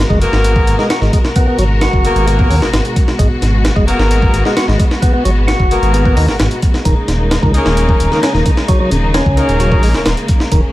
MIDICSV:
0, 0, Header, 1, 6, 480
1, 0, Start_track
1, 0, Key_signature, 5, "minor"
1, 0, Tempo, 458015
1, 1424, Time_signature, 4, 2, 24, 8
1, 11238, End_track
2, 0, Start_track
2, 0, Title_t, "Horn section"
2, 0, Program_c, 0, 61
2, 221, Note_on_c, 0, 66, 81
2, 222, Note_on_c, 0, 58, 90
2, 222, Note_on_c, 0, 59, 91
2, 222, Note_on_c, 0, 68, 85
2, 222, Note_on_c, 0, 70, 98
2, 794, Note_off_c, 0, 66, 0
2, 795, Note_off_c, 0, 58, 0
2, 795, Note_off_c, 0, 59, 0
2, 795, Note_off_c, 0, 68, 0
2, 795, Note_off_c, 0, 70, 0
2, 823, Note_on_c, 0, 58, 79
2, 823, Note_on_c, 0, 59, 77
2, 823, Note_on_c, 0, 66, 74
2, 823, Note_on_c, 0, 68, 76
2, 823, Note_on_c, 0, 70, 86
2, 886, Note_off_c, 0, 58, 0
2, 886, Note_off_c, 0, 59, 0
2, 886, Note_off_c, 0, 66, 0
2, 886, Note_off_c, 0, 68, 0
2, 886, Note_off_c, 0, 70, 0
2, 2144, Note_on_c, 0, 66, 86
2, 2145, Note_on_c, 0, 58, 90
2, 2145, Note_on_c, 0, 59, 88
2, 2145, Note_on_c, 0, 68, 85
2, 2145, Note_on_c, 0, 70, 98
2, 2716, Note_off_c, 0, 58, 0
2, 2716, Note_off_c, 0, 59, 0
2, 2716, Note_off_c, 0, 66, 0
2, 2716, Note_off_c, 0, 68, 0
2, 2716, Note_off_c, 0, 70, 0
2, 2745, Note_on_c, 0, 59, 84
2, 2746, Note_on_c, 0, 58, 83
2, 2746, Note_on_c, 0, 66, 73
2, 2746, Note_on_c, 0, 68, 73
2, 2746, Note_on_c, 0, 70, 90
2, 2807, Note_off_c, 0, 58, 0
2, 2807, Note_off_c, 0, 59, 0
2, 2807, Note_off_c, 0, 66, 0
2, 2807, Note_off_c, 0, 68, 0
2, 2807, Note_off_c, 0, 70, 0
2, 4061, Note_on_c, 0, 58, 96
2, 4061, Note_on_c, 0, 59, 93
2, 4061, Note_on_c, 0, 66, 88
2, 4061, Note_on_c, 0, 68, 85
2, 4061, Note_on_c, 0, 70, 104
2, 4634, Note_off_c, 0, 58, 0
2, 4634, Note_off_c, 0, 66, 0
2, 4634, Note_off_c, 0, 68, 0
2, 4634, Note_off_c, 0, 70, 0
2, 4635, Note_off_c, 0, 59, 0
2, 4663, Note_on_c, 0, 66, 74
2, 4664, Note_on_c, 0, 58, 81
2, 4664, Note_on_c, 0, 59, 78
2, 4664, Note_on_c, 0, 68, 73
2, 4664, Note_on_c, 0, 70, 88
2, 4726, Note_off_c, 0, 58, 0
2, 4726, Note_off_c, 0, 59, 0
2, 4726, Note_off_c, 0, 66, 0
2, 4726, Note_off_c, 0, 68, 0
2, 4726, Note_off_c, 0, 70, 0
2, 5983, Note_on_c, 0, 58, 90
2, 5983, Note_on_c, 0, 66, 85
2, 5983, Note_on_c, 0, 68, 84
2, 5983, Note_on_c, 0, 70, 98
2, 5984, Note_on_c, 0, 59, 93
2, 6555, Note_off_c, 0, 58, 0
2, 6555, Note_off_c, 0, 68, 0
2, 6555, Note_off_c, 0, 70, 0
2, 6556, Note_off_c, 0, 59, 0
2, 6556, Note_off_c, 0, 66, 0
2, 6583, Note_on_c, 0, 59, 82
2, 6584, Note_on_c, 0, 58, 80
2, 6584, Note_on_c, 0, 66, 73
2, 6584, Note_on_c, 0, 68, 71
2, 6584, Note_on_c, 0, 70, 87
2, 6646, Note_off_c, 0, 58, 0
2, 6646, Note_off_c, 0, 59, 0
2, 6646, Note_off_c, 0, 66, 0
2, 6646, Note_off_c, 0, 68, 0
2, 6646, Note_off_c, 0, 70, 0
2, 7904, Note_on_c, 0, 58, 90
2, 7904, Note_on_c, 0, 61, 92
2, 7904, Note_on_c, 0, 68, 88
2, 7904, Note_on_c, 0, 70, 98
2, 7905, Note_on_c, 0, 63, 88
2, 8476, Note_off_c, 0, 58, 0
2, 8476, Note_off_c, 0, 61, 0
2, 8476, Note_off_c, 0, 63, 0
2, 8476, Note_off_c, 0, 68, 0
2, 8476, Note_off_c, 0, 70, 0
2, 8504, Note_on_c, 0, 63, 76
2, 8504, Note_on_c, 0, 68, 75
2, 8505, Note_on_c, 0, 58, 80
2, 8505, Note_on_c, 0, 61, 79
2, 8505, Note_on_c, 0, 70, 87
2, 8566, Note_off_c, 0, 58, 0
2, 8566, Note_off_c, 0, 63, 0
2, 8566, Note_off_c, 0, 68, 0
2, 8566, Note_off_c, 0, 70, 0
2, 8567, Note_off_c, 0, 61, 0
2, 9823, Note_on_c, 0, 58, 98
2, 9823, Note_on_c, 0, 70, 107
2, 9824, Note_on_c, 0, 61, 90
2, 9824, Note_on_c, 0, 63, 82
2, 9824, Note_on_c, 0, 68, 83
2, 10396, Note_off_c, 0, 58, 0
2, 10396, Note_off_c, 0, 61, 0
2, 10396, Note_off_c, 0, 63, 0
2, 10396, Note_off_c, 0, 68, 0
2, 10396, Note_off_c, 0, 70, 0
2, 10425, Note_on_c, 0, 61, 83
2, 10426, Note_on_c, 0, 58, 83
2, 10426, Note_on_c, 0, 63, 75
2, 10426, Note_on_c, 0, 68, 78
2, 10426, Note_on_c, 0, 70, 90
2, 10487, Note_off_c, 0, 58, 0
2, 10487, Note_off_c, 0, 61, 0
2, 10487, Note_off_c, 0, 63, 0
2, 10487, Note_off_c, 0, 68, 0
2, 10487, Note_off_c, 0, 70, 0
2, 11238, End_track
3, 0, Start_track
3, 0, Title_t, "String section"
3, 0, Program_c, 1, 48
3, 0, Note_on_c, 1, 47, 73
3, 0, Note_on_c, 1, 56, 66
3, 0, Note_on_c, 1, 66, 77
3, 0, Note_on_c, 1, 70, 67
3, 3306, Note_off_c, 1, 70, 0
3, 3340, Note_on_c, 1, 59, 68
3, 7141, Note_off_c, 1, 47, 0
3, 7142, Note_off_c, 1, 66, 0
3, 7143, Note_off_c, 1, 59, 0
3, 7180, Note_on_c, 1, 49, 74
3, 7181, Note_on_c, 1, 58, 68
3, 7182, Note_on_c, 1, 63, 81
3, 10984, Note_off_c, 1, 63, 0
3, 11020, Note_on_c, 1, 61, 86
3, 11238, Note_off_c, 1, 49, 0
3, 11238, Note_off_c, 1, 56, 0
3, 11238, Note_off_c, 1, 58, 0
3, 11238, Note_off_c, 1, 61, 0
3, 11238, End_track
4, 0, Start_track
4, 0, Title_t, "Tonewheel organ"
4, 0, Program_c, 2, 16
4, 103, Note_on_c, 2, 56, 99
4, 200, Note_off_c, 2, 56, 0
4, 824, Note_on_c, 2, 56, 74
4, 931, Note_off_c, 2, 56, 0
4, 943, Note_on_c, 2, 66, 100
4, 1052, Note_off_c, 2, 66, 0
4, 1066, Note_on_c, 2, 56, 73
4, 1171, Note_off_c, 2, 56, 0
4, 1183, Note_on_c, 2, 56, 73
4, 1242, Note_off_c, 2, 56, 0
4, 1425, Note_on_c, 2, 59, 78
4, 1532, Note_off_c, 2, 59, 0
4, 1545, Note_on_c, 2, 59, 70
4, 1652, Note_off_c, 2, 59, 0
4, 1663, Note_on_c, 2, 54, 90
4, 1722, Note_off_c, 2, 54, 0
4, 1904, Note_on_c, 2, 66, 95
4, 2372, Note_off_c, 2, 66, 0
4, 2381, Note_on_c, 2, 59, 82
4, 2491, Note_off_c, 2, 59, 0
4, 2503, Note_on_c, 2, 59, 72
4, 2611, Note_off_c, 2, 59, 0
4, 2620, Note_on_c, 2, 61, 73
4, 2681, Note_off_c, 2, 61, 0
4, 3341, Note_on_c, 2, 56, 79
4, 3440, Note_off_c, 2, 56, 0
4, 3941, Note_on_c, 2, 56, 100
4, 4039, Note_off_c, 2, 56, 0
4, 4667, Note_on_c, 2, 56, 75
4, 4773, Note_off_c, 2, 56, 0
4, 4784, Note_on_c, 2, 66, 102
4, 4893, Note_off_c, 2, 66, 0
4, 4905, Note_on_c, 2, 56, 75
4, 5011, Note_off_c, 2, 56, 0
4, 5023, Note_on_c, 2, 56, 74
4, 5082, Note_off_c, 2, 56, 0
4, 5261, Note_on_c, 2, 59, 76
4, 5369, Note_off_c, 2, 59, 0
4, 5382, Note_on_c, 2, 59, 74
4, 5490, Note_off_c, 2, 59, 0
4, 5502, Note_on_c, 2, 54, 90
4, 5562, Note_off_c, 2, 54, 0
4, 5740, Note_on_c, 2, 66, 98
4, 6210, Note_off_c, 2, 66, 0
4, 6220, Note_on_c, 2, 59, 77
4, 6330, Note_off_c, 2, 59, 0
4, 6342, Note_on_c, 2, 59, 68
4, 6451, Note_off_c, 2, 59, 0
4, 6462, Note_on_c, 2, 63, 97
4, 6561, Note_off_c, 2, 63, 0
4, 7182, Note_on_c, 2, 51, 77
4, 7280, Note_off_c, 2, 51, 0
4, 7783, Note_on_c, 2, 51, 98
4, 7880, Note_off_c, 2, 51, 0
4, 8505, Note_on_c, 2, 51, 74
4, 8612, Note_off_c, 2, 51, 0
4, 8623, Note_on_c, 2, 61, 104
4, 8732, Note_off_c, 2, 61, 0
4, 8746, Note_on_c, 2, 51, 76
4, 8850, Note_off_c, 2, 51, 0
4, 8862, Note_on_c, 2, 51, 76
4, 8922, Note_off_c, 2, 51, 0
4, 9099, Note_on_c, 2, 54, 82
4, 9212, Note_off_c, 2, 54, 0
4, 9225, Note_on_c, 2, 54, 74
4, 9332, Note_off_c, 2, 54, 0
4, 9340, Note_on_c, 2, 49, 95
4, 9401, Note_off_c, 2, 49, 0
4, 9581, Note_on_c, 2, 61, 98
4, 10051, Note_off_c, 2, 61, 0
4, 10061, Note_on_c, 2, 54, 83
4, 10173, Note_off_c, 2, 54, 0
4, 10185, Note_on_c, 2, 54, 71
4, 10292, Note_off_c, 2, 54, 0
4, 10305, Note_on_c, 2, 56, 72
4, 10363, Note_off_c, 2, 56, 0
4, 11024, Note_on_c, 2, 51, 82
4, 11121, Note_off_c, 2, 51, 0
4, 11238, End_track
5, 0, Start_track
5, 0, Title_t, "Detuned saw bass"
5, 0, Program_c, 3, 39
5, 105, Note_on_c, 3, 30, 100
5, 263, Note_off_c, 3, 30, 0
5, 342, Note_on_c, 3, 32, 100
5, 638, Note_off_c, 3, 32, 0
5, 702, Note_on_c, 3, 32, 81
5, 783, Note_off_c, 3, 32, 0
5, 1062, Note_on_c, 3, 32, 93
5, 1142, Note_off_c, 3, 32, 0
5, 1658, Note_on_c, 3, 32, 76
5, 1957, Note_off_c, 3, 32, 0
5, 2024, Note_on_c, 3, 30, 95
5, 2182, Note_off_c, 3, 30, 0
5, 2261, Note_on_c, 3, 32, 101
5, 2557, Note_off_c, 3, 32, 0
5, 2620, Note_on_c, 3, 39, 97
5, 2736, Note_off_c, 3, 39, 0
5, 2742, Note_on_c, 3, 32, 43
5, 2839, Note_off_c, 3, 32, 0
5, 2859, Note_on_c, 3, 32, 101
5, 2941, Note_off_c, 3, 32, 0
5, 3345, Note_on_c, 3, 32, 99
5, 3424, Note_off_c, 3, 32, 0
5, 3581, Note_on_c, 3, 32, 78
5, 3878, Note_off_c, 3, 32, 0
5, 3945, Note_on_c, 3, 30, 94
5, 4103, Note_off_c, 3, 30, 0
5, 4179, Note_on_c, 3, 32, 100
5, 4476, Note_off_c, 3, 32, 0
5, 4542, Note_on_c, 3, 32, 83
5, 4623, Note_off_c, 3, 32, 0
5, 4902, Note_on_c, 3, 32, 91
5, 4982, Note_off_c, 3, 32, 0
5, 5504, Note_on_c, 3, 32, 74
5, 5799, Note_off_c, 3, 32, 0
5, 5865, Note_on_c, 3, 30, 94
5, 6023, Note_off_c, 3, 30, 0
5, 6101, Note_on_c, 3, 32, 104
5, 6397, Note_off_c, 3, 32, 0
5, 6462, Note_on_c, 3, 39, 92
5, 6577, Note_off_c, 3, 39, 0
5, 6583, Note_on_c, 3, 32, 41
5, 6679, Note_off_c, 3, 32, 0
5, 6703, Note_on_c, 3, 32, 98
5, 6783, Note_off_c, 3, 32, 0
5, 7183, Note_on_c, 3, 27, 98
5, 7263, Note_off_c, 3, 27, 0
5, 7421, Note_on_c, 3, 27, 74
5, 7718, Note_off_c, 3, 27, 0
5, 7785, Note_on_c, 3, 37, 97
5, 7943, Note_off_c, 3, 37, 0
5, 8025, Note_on_c, 3, 27, 102
5, 8319, Note_off_c, 3, 27, 0
5, 8382, Note_on_c, 3, 27, 81
5, 8463, Note_off_c, 3, 27, 0
5, 8742, Note_on_c, 3, 27, 97
5, 8822, Note_off_c, 3, 27, 0
5, 9343, Note_on_c, 3, 27, 77
5, 9639, Note_off_c, 3, 27, 0
5, 9705, Note_on_c, 3, 37, 99
5, 9863, Note_off_c, 3, 37, 0
5, 9942, Note_on_c, 3, 27, 101
5, 10238, Note_off_c, 3, 27, 0
5, 10301, Note_on_c, 3, 34, 97
5, 10416, Note_off_c, 3, 34, 0
5, 10422, Note_on_c, 3, 27, 41
5, 10518, Note_off_c, 3, 27, 0
5, 10541, Note_on_c, 3, 27, 99
5, 10623, Note_off_c, 3, 27, 0
5, 11023, Note_on_c, 3, 27, 94
5, 11103, Note_off_c, 3, 27, 0
5, 11238, End_track
6, 0, Start_track
6, 0, Title_t, "Drums"
6, 106, Note_on_c, 9, 36, 91
6, 211, Note_off_c, 9, 36, 0
6, 226, Note_on_c, 9, 42, 65
6, 331, Note_off_c, 9, 42, 0
6, 347, Note_on_c, 9, 38, 53
6, 451, Note_off_c, 9, 38, 0
6, 466, Note_on_c, 9, 42, 83
6, 570, Note_off_c, 9, 42, 0
6, 586, Note_on_c, 9, 36, 89
6, 690, Note_off_c, 9, 36, 0
6, 706, Note_on_c, 9, 42, 65
6, 811, Note_off_c, 9, 42, 0
6, 826, Note_on_c, 9, 38, 37
6, 931, Note_off_c, 9, 38, 0
6, 943, Note_on_c, 9, 38, 114
6, 943, Note_on_c, 9, 42, 83
6, 1048, Note_off_c, 9, 38, 0
6, 1048, Note_off_c, 9, 42, 0
6, 1066, Note_on_c, 9, 38, 36
6, 1170, Note_off_c, 9, 38, 0
6, 1184, Note_on_c, 9, 36, 91
6, 1185, Note_on_c, 9, 42, 65
6, 1289, Note_off_c, 9, 36, 0
6, 1290, Note_off_c, 9, 42, 0
6, 1305, Note_on_c, 9, 38, 45
6, 1410, Note_off_c, 9, 38, 0
6, 1422, Note_on_c, 9, 42, 83
6, 1423, Note_on_c, 9, 36, 111
6, 1527, Note_off_c, 9, 42, 0
6, 1528, Note_off_c, 9, 36, 0
6, 1662, Note_on_c, 9, 42, 66
6, 1767, Note_off_c, 9, 42, 0
6, 1901, Note_on_c, 9, 38, 117
6, 1901, Note_on_c, 9, 42, 84
6, 2006, Note_off_c, 9, 38, 0
6, 2006, Note_off_c, 9, 42, 0
6, 2024, Note_on_c, 9, 36, 91
6, 2129, Note_off_c, 9, 36, 0
6, 2145, Note_on_c, 9, 42, 64
6, 2250, Note_off_c, 9, 42, 0
6, 2265, Note_on_c, 9, 42, 42
6, 2370, Note_off_c, 9, 42, 0
6, 2384, Note_on_c, 9, 42, 81
6, 2489, Note_off_c, 9, 42, 0
6, 2505, Note_on_c, 9, 36, 92
6, 2610, Note_off_c, 9, 36, 0
6, 2625, Note_on_c, 9, 46, 79
6, 2730, Note_off_c, 9, 46, 0
6, 2747, Note_on_c, 9, 38, 51
6, 2852, Note_off_c, 9, 38, 0
6, 2865, Note_on_c, 9, 38, 113
6, 2865, Note_on_c, 9, 42, 83
6, 2970, Note_off_c, 9, 38, 0
6, 2970, Note_off_c, 9, 42, 0
6, 2986, Note_on_c, 9, 42, 42
6, 3090, Note_off_c, 9, 42, 0
6, 3104, Note_on_c, 9, 36, 93
6, 3105, Note_on_c, 9, 42, 65
6, 3209, Note_off_c, 9, 36, 0
6, 3210, Note_off_c, 9, 42, 0
6, 3227, Note_on_c, 9, 38, 43
6, 3332, Note_off_c, 9, 38, 0
6, 3344, Note_on_c, 9, 36, 108
6, 3346, Note_on_c, 9, 42, 87
6, 3449, Note_off_c, 9, 36, 0
6, 3451, Note_off_c, 9, 42, 0
6, 3586, Note_on_c, 9, 38, 36
6, 3586, Note_on_c, 9, 42, 66
6, 3691, Note_off_c, 9, 38, 0
6, 3691, Note_off_c, 9, 42, 0
6, 3823, Note_on_c, 9, 38, 119
6, 3823, Note_on_c, 9, 42, 86
6, 3928, Note_off_c, 9, 38, 0
6, 3928, Note_off_c, 9, 42, 0
6, 3944, Note_on_c, 9, 36, 93
6, 4049, Note_off_c, 9, 36, 0
6, 4067, Note_on_c, 9, 42, 66
6, 4171, Note_off_c, 9, 42, 0
6, 4187, Note_on_c, 9, 38, 53
6, 4291, Note_off_c, 9, 38, 0
6, 4305, Note_on_c, 9, 42, 85
6, 4410, Note_off_c, 9, 42, 0
6, 4425, Note_on_c, 9, 36, 95
6, 4530, Note_off_c, 9, 36, 0
6, 4545, Note_on_c, 9, 42, 67
6, 4650, Note_off_c, 9, 42, 0
6, 4667, Note_on_c, 9, 38, 37
6, 4771, Note_off_c, 9, 38, 0
6, 4785, Note_on_c, 9, 38, 116
6, 4785, Note_on_c, 9, 42, 86
6, 4890, Note_off_c, 9, 38, 0
6, 4890, Note_off_c, 9, 42, 0
6, 4907, Note_on_c, 9, 38, 38
6, 5012, Note_off_c, 9, 38, 0
6, 5024, Note_on_c, 9, 36, 91
6, 5025, Note_on_c, 9, 42, 65
6, 5129, Note_off_c, 9, 36, 0
6, 5130, Note_off_c, 9, 42, 0
6, 5148, Note_on_c, 9, 38, 49
6, 5253, Note_off_c, 9, 38, 0
6, 5265, Note_on_c, 9, 36, 113
6, 5267, Note_on_c, 9, 42, 87
6, 5369, Note_off_c, 9, 36, 0
6, 5371, Note_off_c, 9, 42, 0
6, 5506, Note_on_c, 9, 42, 67
6, 5611, Note_off_c, 9, 42, 0
6, 5745, Note_on_c, 9, 38, 114
6, 5745, Note_on_c, 9, 42, 85
6, 5850, Note_off_c, 9, 38, 0
6, 5850, Note_off_c, 9, 42, 0
6, 5865, Note_on_c, 9, 36, 94
6, 5970, Note_off_c, 9, 36, 0
6, 5986, Note_on_c, 9, 42, 66
6, 6091, Note_off_c, 9, 42, 0
6, 6108, Note_on_c, 9, 42, 42
6, 6213, Note_off_c, 9, 42, 0
6, 6224, Note_on_c, 9, 42, 85
6, 6329, Note_off_c, 9, 42, 0
6, 6345, Note_on_c, 9, 36, 95
6, 6449, Note_off_c, 9, 36, 0
6, 6463, Note_on_c, 9, 46, 82
6, 6568, Note_off_c, 9, 46, 0
6, 6585, Note_on_c, 9, 38, 51
6, 6690, Note_off_c, 9, 38, 0
6, 6702, Note_on_c, 9, 38, 114
6, 6702, Note_on_c, 9, 42, 84
6, 6807, Note_off_c, 9, 38, 0
6, 6807, Note_off_c, 9, 42, 0
6, 6822, Note_on_c, 9, 42, 42
6, 6927, Note_off_c, 9, 42, 0
6, 6942, Note_on_c, 9, 42, 65
6, 6943, Note_on_c, 9, 36, 91
6, 7047, Note_off_c, 9, 42, 0
6, 7048, Note_off_c, 9, 36, 0
6, 7064, Note_on_c, 9, 38, 42
6, 7169, Note_off_c, 9, 38, 0
6, 7182, Note_on_c, 9, 42, 89
6, 7183, Note_on_c, 9, 36, 113
6, 7287, Note_off_c, 9, 42, 0
6, 7288, Note_off_c, 9, 36, 0
6, 7422, Note_on_c, 9, 38, 36
6, 7422, Note_on_c, 9, 42, 70
6, 7527, Note_off_c, 9, 38, 0
6, 7527, Note_off_c, 9, 42, 0
6, 7664, Note_on_c, 9, 38, 113
6, 7664, Note_on_c, 9, 42, 86
6, 7769, Note_off_c, 9, 38, 0
6, 7769, Note_off_c, 9, 42, 0
6, 7785, Note_on_c, 9, 36, 93
6, 7890, Note_off_c, 9, 36, 0
6, 7904, Note_on_c, 9, 42, 65
6, 8009, Note_off_c, 9, 42, 0
6, 8025, Note_on_c, 9, 38, 55
6, 8130, Note_off_c, 9, 38, 0
6, 8143, Note_on_c, 9, 42, 85
6, 8248, Note_off_c, 9, 42, 0
6, 8266, Note_on_c, 9, 36, 89
6, 8370, Note_off_c, 9, 36, 0
6, 8384, Note_on_c, 9, 42, 69
6, 8489, Note_off_c, 9, 42, 0
6, 8507, Note_on_c, 9, 38, 37
6, 8611, Note_off_c, 9, 38, 0
6, 8624, Note_on_c, 9, 38, 116
6, 8624, Note_on_c, 9, 42, 90
6, 8729, Note_off_c, 9, 38, 0
6, 8729, Note_off_c, 9, 42, 0
6, 8745, Note_on_c, 9, 38, 37
6, 8850, Note_off_c, 9, 38, 0
6, 8862, Note_on_c, 9, 42, 66
6, 8864, Note_on_c, 9, 36, 89
6, 8967, Note_off_c, 9, 42, 0
6, 8968, Note_off_c, 9, 36, 0
6, 8985, Note_on_c, 9, 38, 47
6, 9090, Note_off_c, 9, 38, 0
6, 9101, Note_on_c, 9, 42, 88
6, 9104, Note_on_c, 9, 36, 108
6, 9206, Note_off_c, 9, 42, 0
6, 9209, Note_off_c, 9, 36, 0
6, 9343, Note_on_c, 9, 42, 69
6, 9447, Note_off_c, 9, 42, 0
6, 9582, Note_on_c, 9, 38, 113
6, 9582, Note_on_c, 9, 42, 84
6, 9687, Note_off_c, 9, 38, 0
6, 9687, Note_off_c, 9, 42, 0
6, 9705, Note_on_c, 9, 36, 92
6, 9810, Note_off_c, 9, 36, 0
6, 9822, Note_on_c, 9, 42, 63
6, 9927, Note_off_c, 9, 42, 0
6, 9944, Note_on_c, 9, 42, 43
6, 10049, Note_off_c, 9, 42, 0
6, 10060, Note_on_c, 9, 42, 83
6, 10165, Note_off_c, 9, 42, 0
6, 10183, Note_on_c, 9, 36, 91
6, 10288, Note_off_c, 9, 36, 0
6, 10300, Note_on_c, 9, 46, 80
6, 10405, Note_off_c, 9, 46, 0
6, 10421, Note_on_c, 9, 38, 50
6, 10526, Note_off_c, 9, 38, 0
6, 10538, Note_on_c, 9, 38, 120
6, 10538, Note_on_c, 9, 42, 87
6, 10643, Note_off_c, 9, 38, 0
6, 10643, Note_off_c, 9, 42, 0
6, 10660, Note_on_c, 9, 42, 44
6, 10765, Note_off_c, 9, 42, 0
6, 10777, Note_on_c, 9, 42, 66
6, 10782, Note_on_c, 9, 36, 93
6, 10882, Note_off_c, 9, 42, 0
6, 10886, Note_off_c, 9, 36, 0
6, 10902, Note_on_c, 9, 38, 42
6, 11007, Note_off_c, 9, 38, 0
6, 11021, Note_on_c, 9, 42, 90
6, 11022, Note_on_c, 9, 36, 111
6, 11126, Note_off_c, 9, 42, 0
6, 11127, Note_off_c, 9, 36, 0
6, 11238, End_track
0, 0, End_of_file